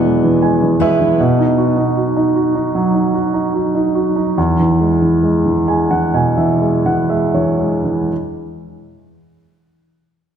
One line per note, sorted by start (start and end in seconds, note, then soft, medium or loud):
0.00 1.14 E2 medium
0.00 1.15 B2 soft
0.00 0.24 E3 soft
0.00 1.18 E3 medium
0.00 0.04 G#3 soft
0.00 0.79 B3 soft
0.00 0.79 E4 soft
0.00 0.81 B4 medium
0.04 0.41 G#3 soft
0.24 0.61 E3 soft
0.42 0.80 G#3 soft
0.42 0.77 G#5 soft
0.62 0.99 E3 soft
0.80 1.18 G#3 soft
0.80 1.76 B3 soft
0.80 1.26 E4 soft
0.80 1.76 B4 soft
0.80 1.16 E5 medium
1.01 1.18 E3 soft
1.20 4.34 B2 medium
1.39 1.75 D#4 soft
1.58 1.95 F#4 soft
1.77 2.15 D#4 soft
1.96 2.34 F#4 soft
2.17 2.54 D#4 soft
2.35 3.12 F#4 soft
2.55 2.93 D#4 soft
2.75 4.33 F#3 soft
2.94 3.32 D#4 soft
3.14 3.52 F#4 soft
3.34 3.73 D#4 soft
3.54 3.94 F#4 soft
3.75 4.15 D#4 soft
3.95 4.36 F#4 soft
4.16 4.36 D#4 soft
4.38 8.07 E2 medium
4.59 5.00 E3 soft
4.81 5.22 G#3 soft
5.02 5.44 E3 soft
5.23 5.66 G#3 soft
5.46 5.89 E3 soft
5.68 6.60 G#3 soft
5.68 5.89 G#5 soft
5.91 6.36 E3 soft
5.91 6.12 F#5 soft
6.14 8.07 B2 soft
6.14 6.36 G#5 soft
6.37 6.84 E3 soft
6.37 6.82 E5 soft
6.61 7.08 G#3 soft
6.86 7.33 E3 soft
6.86 7.08 F#5 soft
7.10 7.58 G#3 soft
7.10 7.32 E5 soft
7.34 7.83 E3 soft
7.34 8.07 C#5 soft
7.59 8.09 G#3 soft
7.84 8.10 E3 soft